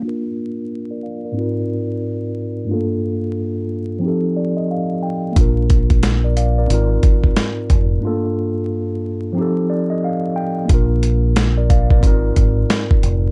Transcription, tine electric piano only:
0.00 A#3 D4
0.05 F4 A#4
0.91 A#4 D5
1.03 D5 F5
1.25 A#4 D5
1.32 G#2 C4
1.36 D#4 F4
1.41 A#4
2.65 G2 A3
2.69 D4 F4
2.73 A#3 A4
3.99 F3 C4
4.03 D#4 G4
4.08 A4
4.36 D5
4.57 D#5
4.71 F5
5.03 G5
5.32 A#3 D4
5.38 F4 A#4
6.24 A#4 D5
6.37 D5 F5
6.58 A#4 D5
6.65 G#2 C4
6.70 D#4 F4
6.74 A#4
7.98 G2 A3
8.02 D4 F4
8.07 A#3 A4
9.32 F3 C4
9.37 D#4 G4
9.41 A4
9.70 D5
9.90 D#5
10.04 F5
10.36 G5
10.65 A#3 D4
10.71 F4 A#4
11.57 A#4 D5
11.70 D5 F5
11.91 A#4 D5
11.98 G#2 C4
12.03 D#4 F4
12.07 A#4

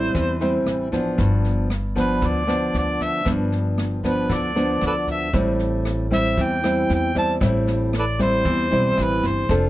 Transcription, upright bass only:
Already playing: A1
0.15 E2
0.66 A1
1.19 G1
2.22 D2
2.74 D2
3.26 G1
4.30 D2
4.82 D2
5.34 A1
6.38 E2
6.90 E2
7.41 A1
8.45 E2
8.71 B1
8.98 A1
9.23 G1
9.49 F1

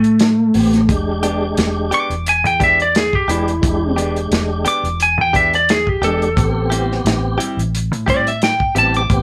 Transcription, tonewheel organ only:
0.54 B3 C4 G4
0.88 G#3 D4 G4
3.28 G#3 D4 G4
3.62 G#3 D4 G4
6.02 G#3 D4 G4
6.36 B3 C4 G4
8.75 B3 C4 G4
9.10 B3 C4 G4

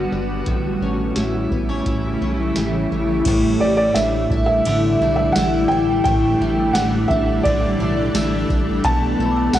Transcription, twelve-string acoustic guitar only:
Already playing: G3 B3 D4 F#4
0.12 D4
0.47 A2
0.82 C#4
1.17 E4
1.52 B3
1.69 C#4
1.86 E4
2.22 C#4
2.57 G3
2.92 C#4
3.27 A2
3.62 G3
3.97 D4
4.32 E4
4.67 D3
5.02 D4
5.37 E4
5.71 D4
6.06 A2
6.42 G3
6.76 D4
7.11 E4
7.46 D3
7.80 D4
8.15 E4
8.50 D4
8.85 B2
9.20 A3
9.55 D4

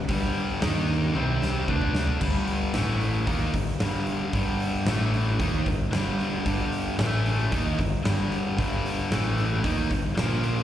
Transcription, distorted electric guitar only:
0.08 G2 D3 G3
0.61 D#3 A#3 D#4
1.14 C3 G3 C4
1.68 D3 A3 D4
2.20 G2 D3 G3
2.74 A2 E3 A3
3.27 D#3 A#3 D#4
3.55 G2 D3
3.80 G2 D3 G3
4.33 G2 D3 G3
4.87 A2 E3 A3
5.40 D#3 A#3 D#4
5.67 G2 D3
5.93 G2 D3 G3
6.46 G2 D3 G3
6.99 A2 E3 A3
7.52 D#3 A#3 D#4
7.79 G2 D3
8.05 G2 D3 G3
8.58 G2 D3 G3
9.11 A2 E3 A3
9.64 D#3 A#3 D#4
9.92 G2 D3
10.17 A#2 F3 A#3

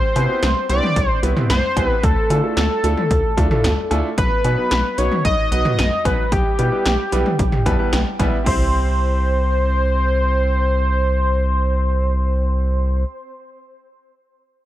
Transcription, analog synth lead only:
Already playing: C5
0.69 D5
1.50 C5
1.86 B4
2.03 A4
2.57 A4
4.18 B4
4.98 C#5
5.25 D#5
5.52 D#5
6.05 B4
6.32 G4
8.46 C5

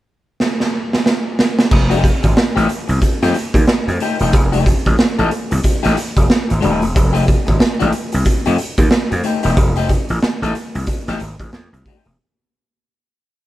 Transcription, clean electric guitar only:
1.71 muted clean electric guitar stroke
1.90 A3 D#4 G4
2.04 muted clean electric guitar stroke
2.23 muted clean electric guitar stroke
2.37 muted clean electric guitar stroke
2.56 A3 D#4 G4
2.69 muted clean electric guitar stroke
2.88 muted clean electric guitar stroke
3.02 muted clean electric guitar stroke
3.23 A3 D#4 G4
3.36 muted clean electric guitar stroke
3.56 muted clean electric guitar stroke
3.70 muted clean electric guitar stroke
3.88 muted clean electric guitar stroke
4.01 A3 D#4 G4
4.21 A3 D#4 G4
4.34 muted clean electric guitar stroke
4.52 A3 D#4 G4
4.66 muted clean electric guitar stroke
4.87 muted clean electric guitar stroke
5.00 muted clean electric guitar stroke
5.19 A3 D#4 A4
5.31 muted clean electric guitar stroke
5.51 muted clean electric guitar stroke
5.64 muted clean electric guitar stroke
5.83 A3 D#4 G4
5.98 muted clean electric guitar stroke
6.17 muted clean electric guitar stroke
6.49 muted clean electric guitar stroke
6.61 A3 D#4 G4
6.81 muted clean electric guitar stroke
6.94 muted clean electric guitar stroke
7.13 A3 D#4 G4
7.26 muted clean electric guitar stroke
7.47 muted clean electric guitar stroke
7.59 muted clean electric guitar stroke
7.79 A3 D#4 G4
7.92 muted clean electric guitar stroke
8.13 muted clean electric guitar stroke
8.26 muted clean electric guitar stroke
8.46 A3 D#4 G4
8.58 muted clean electric guitar stroke
8.79 muted clean electric guitar stroke
8.91 muted clean electric guitar stroke
9.11 muted clean electric guitar stroke
9.24 A3 D#4 G4
9.43 A3 D#4 G4
9.57 muted clean electric guitar stroke
9.77 A3 D#4 G4
9.90 muted clean electric guitar stroke
10.10 muted clean electric guitar stroke
10.23 muted clean electric guitar stroke
10.43 A3 D#4 A4
10.55 muted clean electric guitar stroke
10.75 muted clean electric guitar stroke
10.89 muted clean electric guitar stroke
11.09 A3 D#4 G4
11.22 muted clean electric guitar stroke
11.42 muted clean electric guitar stroke
11.74 muted clean electric guitar stroke
11.87 A3 D#4 G4
12.06 muted clean electric guitar stroke

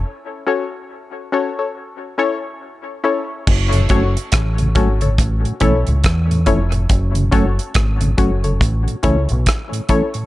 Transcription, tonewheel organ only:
3.73 F#2 C#3
3.90 F#3 A3 C#4
4.60 F#2 C#3
4.76 F#3 A3 C#4
5.02 F#2 C#3
5.44 A2
5.61 E3 A3 C#4
5.87 A2
6.30 A2
6.47 E3 A3 C#4
6.73 A2
7.16 F#2 C#3
7.33 F#3 A3 C#4
8.01 F#2 C#3
8.18 F#3 A3 C#4
8.45 F#2 C#3
8.88 A2
9.03 E3 A3 C#4
9.30 A2
9.72 A2
9.89 E3 A3 C#4
10.15 A2

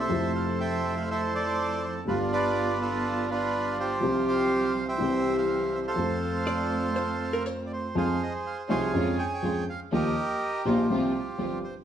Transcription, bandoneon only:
0.00 A4 C5 E5
0.35 F5
0.60 C5 E5 G5
0.97 F5
1.11 A4 C5 E5
1.35 A4 D5
1.83 C5
2.08 D4 F4 B4
2.33 F4 B4 D5
2.82 D4 F4 A4
3.31 D4 F4 B4
3.80 F4 G4 C5
4.28 C5 F5
4.88 C5 E5 G5
5.38 C5 F5
5.75 E5
5.87 A4 C5 F5
7.66 D5
7.73 C5
7.97 G#4 C5 F5
8.23 D#5
8.47 F5
8.70 G#4 C#5 F5
9.19 G5
9.26 G#5
9.34 G5
9.70 F5
9.94 G4 A#4 D#5
10.66 F4 G4 C5
11.64 C5

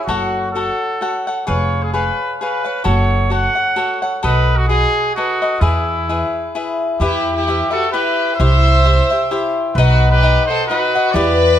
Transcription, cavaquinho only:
0.08 F#4 A4 C#5 F#5
0.55 F#4 A4 C#5 F#5
1.01 F#4 A4 C#5 F#5
1.27 A4 C#5 F#5
1.47 G#4 B4 C#5 F5
1.94 G#4 B4 C#5 F5
2.41 G#4 B4 C#5 F5
2.64 B4 C#5 F5
2.84 F#4 A4 C#5 F#5
3.30 F#4 A4 C#5 F#5
3.55 A4 C#5 F#5
3.76 F#4 A4 C#5 F#5
4.02 A4 C#5 F#5
4.23 F#4 A4 B4 D#5
4.69 F#4 B4 D#5
5.16 F#4 A4 B4 D#5
5.42 A4 B4 D#5
5.61 E4 G#4 B4 E5
6.09 E4 G#4 B4 E5
6.55 E4 G#4 B4 E5
7.01 E4 G4 B4 E5
7.48 E4 G4 B4 E5
7.71 G4 B4 E5
7.94 E4 G4 B4 E5
8.40 E4 G4 C5 E5
8.86 E4 G4 C5 E5
9.10 G4 C5 E5
9.31 E4 G4 C5 E5
9.78 D#4 B4 D#5 F#5
10.22 D#4 B4 D#5 F#5
10.50 B4 D#5 F#5
10.70 D#4 B4 D#5 F#5
10.95 B4 D#5 F#5
11.15 E4 G4 B4 D5

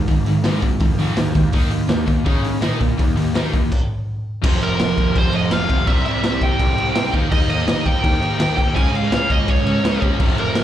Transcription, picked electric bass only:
0.08 G#1
0.26 G#1
0.45 G#1
0.62 G#1
0.80 F2
1.17 D#2
1.35 D#2
1.54 D#2
1.71 D#2
1.89 D#2
2.08 D#2
2.26 C#3
2.62 A#2
2.81 A#2
2.99 D#2
3.17 D#2
3.34 D#2
3.54 D#2
4.44 F1
4.62 F1
4.81 F1
4.98 F1
5.16 F1
5.33 F1
5.52 F1
5.70 F1
5.87 C2
6.06 C2
6.24 C2
6.42 C2
6.59 C2
6.77 C2
6.95 C2
7.14 D#2
7.32 D#2
7.49 D#2
7.68 D#2
7.86 D#2
8.04 D#2
8.21 D#2
8.39 D#2
8.58 D#2
8.76 C#2
8.93 C#2
9.11 C#2
9.30 C#2
9.48 C#2
9.66 C#2
9.83 C#2
10.02 C#2
10.20 F1
10.37 F1
10.56 F1

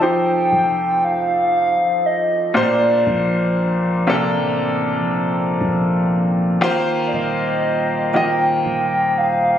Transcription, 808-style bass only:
Already playing: F1
0.52 F1
3.07 A#1
4.34 A1
4.98 A#1
5.61 A#1
7.13 D#1
8.66 D#1

